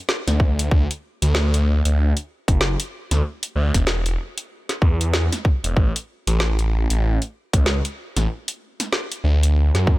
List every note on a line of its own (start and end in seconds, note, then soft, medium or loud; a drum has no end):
0.09 snare loud
0.27 0.69 D2 loud
0.27 snare soft
0.27 closed hi-hat medium
0.40 kick loud
0.59 closed hi-hat medium
0.71 0.87 D2 loud
0.71 kick loud
0.91 closed hi-hat medium
1.22 1.82 D2 medium
1.22 closed hi-hat medium
1.35 snare loud
1.54 closed hi-hat soft
1.85 2.14 D2 loud
1.85 closed hi-hat medium
2.17 closed hi-hat soft
2.48 2.77 F#1 loud
2.48 kick loud
2.48 closed hi-hat medium
2.61 snare loud
2.80 closed hi-hat medium
3.11 3.22 D2 medium
3.11 snare soft
3.11 closed hi-hat medium
3.43 closed hi-hat medium
3.56 3.71 D2 loud
3.74 4.17 E1 loud
3.74 kick medium
3.74 snare soft
3.74 closed hi-hat medium
3.87 snare loud
4.06 closed hi-hat soft
4.38 closed hi-hat medium
4.69 snare soft
4.69 closed hi-hat soft
4.82 5.29 E2 loud
4.82 kick loud
5.01 closed hi-hat medium
5.13 snare loud
5.33 snare soft
5.33 closed hi-hat medium
5.45 kick loud
5.64 5.74 E1 medium
5.64 closed hi-hat medium
5.76 5.92 A1 medium
5.76 kick loud
5.96 closed hi-hat medium
6.27 6.87 A1 loud
6.27 closed hi-hat medium
6.40 snare loud
6.59 closed hi-hat soft
6.90 7.19 A1 loud
6.90 closed hi-hat medium
7.22 closed hi-hat soft
7.53 7.82 C#2 medium
7.53 kick loud
7.53 closed hi-hat medium
7.66 snare loud
7.85 closed hi-hat soft
8.16 8.27 A1 loud
8.16 snare soft
8.16 closed hi-hat medium
8.48 closed hi-hat medium
8.80 snare soft
8.80 closed hi-hat medium
8.93 snare loud
9.12 closed hi-hat soft
9.24 9.71 D2 medium
9.43 closed hi-hat medium
9.74 9.99 F#2 loud
9.74 snare soft
9.74 closed hi-hat soft
9.87 kick loud